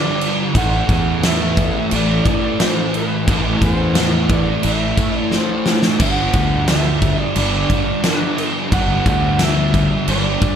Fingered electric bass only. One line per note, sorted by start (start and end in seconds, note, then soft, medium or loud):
0.55 0.82 A1 loud
0.89 1.70 E2 loud
1.92 2.19 A1 loud
3.28 3.55 A1 loud
3.62 4.43 E2 loud
4.65 4.91 A1 loud
6.00 6.27 G1 loud
6.34 7.15 D2 loud
7.36 7.63 G1 loud
8.72 8.99 G1 loud
9.06 9.87 D2 loud
10.08 10.35 G1 loud